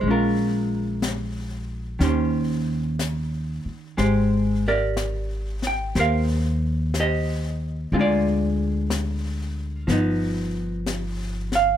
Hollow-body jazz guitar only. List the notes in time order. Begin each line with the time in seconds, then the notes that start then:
0.01 G#3
0.07 C#4 F4 A#4
1.99 D#3 C#4 G4
2.04 C5
3.97 G#3 G4 C5
4.68 G4 A#4 D5
5.67 G5
5.96 G4 A#4 C5
6.00 F5
7.00 G4 C5 D#5
7.93 D3 G#3 C4 F4
7.99 F4 G#4 D5
9.87 F3 B3
9.92 D#4
11.55 F5